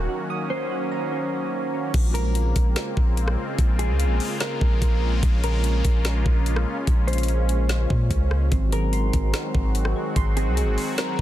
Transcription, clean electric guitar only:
0, 0, Header, 1, 2, 480
1, 0, Start_track
1, 0, Key_signature, -5, "minor"
1, 0, Tempo, 410959
1, 348, Time_signature, 4, 2, 24, 8
1, 13097, End_track
2, 0, Start_track
2, 0, Title_t, "Clean electric guitar"
2, 0, Program_c, 0, 27
2, 0, Note_on_c, 0, 70, 73
2, 305, Note_off_c, 0, 70, 0
2, 585, Note_on_c, 0, 72, 74
2, 2220, Note_off_c, 0, 72, 0
2, 2501, Note_on_c, 0, 70, 81
2, 4138, Note_off_c, 0, 70, 0
2, 4425, Note_on_c, 0, 68, 76
2, 5103, Note_off_c, 0, 68, 0
2, 5149, Note_on_c, 0, 70, 89
2, 6062, Note_off_c, 0, 70, 0
2, 6351, Note_on_c, 0, 70, 72
2, 7983, Note_off_c, 0, 70, 0
2, 8263, Note_on_c, 0, 72, 83
2, 9898, Note_off_c, 0, 72, 0
2, 10192, Note_on_c, 0, 70, 77
2, 11823, Note_off_c, 0, 70, 0
2, 12109, Note_on_c, 0, 68, 79
2, 12785, Note_off_c, 0, 68, 0
2, 12831, Note_on_c, 0, 70, 89
2, 13097, Note_off_c, 0, 70, 0
2, 13097, End_track
0, 0, End_of_file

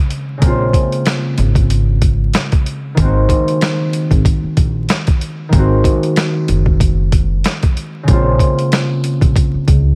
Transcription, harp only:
0, 0, Header, 1, 2, 480
1, 0, Start_track
1, 0, Key_signature, -5, "minor"
1, 0, Tempo, 638298
1, 315, Time_signature, 4, 2, 24, 8
1, 7482, End_track
2, 0, Start_track
2, 0, Title_t, "Harp"
2, 0, Program_c, 0, 46
2, 0, Note_on_c, 0, 49, 72
2, 0, Note_on_c, 0, 56, 62
2, 0, Note_on_c, 0, 58, 63
2, 0, Note_on_c, 0, 60, 69
2, 0, Note_on_c, 0, 65, 82
2, 273, Note_off_c, 0, 49, 0
2, 282, Note_on_c, 0, 49, 71
2, 291, Note_off_c, 0, 56, 0
2, 300, Note_on_c, 0, 56, 64
2, 316, Note_off_c, 0, 58, 0
2, 319, Note_on_c, 0, 58, 69
2, 327, Note_off_c, 0, 60, 0
2, 333, Note_off_c, 0, 65, 0
2, 337, Note_on_c, 0, 60, 66
2, 355, Note_on_c, 0, 65, 81
2, 2216, Note_on_c, 0, 51, 74
2, 2225, Note_off_c, 0, 56, 0
2, 2234, Note_on_c, 0, 56, 65
2, 2250, Note_off_c, 0, 58, 0
2, 2252, Note_off_c, 0, 65, 0
2, 2253, Note_on_c, 0, 58, 70
2, 2268, Note_off_c, 0, 60, 0
2, 2271, Note_on_c, 0, 60, 73
2, 2273, Note_off_c, 0, 49, 0
2, 2289, Note_on_c, 0, 66, 80
2, 4119, Note_off_c, 0, 51, 0
2, 4128, Note_on_c, 0, 51, 74
2, 4137, Note_off_c, 0, 56, 0
2, 4146, Note_on_c, 0, 56, 69
2, 4152, Note_off_c, 0, 66, 0
2, 4162, Note_off_c, 0, 58, 0
2, 4165, Note_on_c, 0, 58, 71
2, 4179, Note_off_c, 0, 60, 0
2, 4182, Note_on_c, 0, 60, 68
2, 4201, Note_on_c, 0, 66, 88
2, 6040, Note_on_c, 0, 49, 70
2, 6049, Note_off_c, 0, 56, 0
2, 6058, Note_on_c, 0, 56, 63
2, 6068, Note_off_c, 0, 66, 0
2, 6074, Note_off_c, 0, 58, 0
2, 6077, Note_on_c, 0, 58, 67
2, 6085, Note_off_c, 0, 60, 0
2, 6094, Note_on_c, 0, 60, 72
2, 6113, Note_off_c, 0, 51, 0
2, 6113, Note_on_c, 0, 65, 83
2, 7482, Note_off_c, 0, 49, 0
2, 7482, Note_off_c, 0, 56, 0
2, 7482, Note_off_c, 0, 58, 0
2, 7482, Note_off_c, 0, 60, 0
2, 7482, Note_off_c, 0, 65, 0
2, 7482, End_track
0, 0, End_of_file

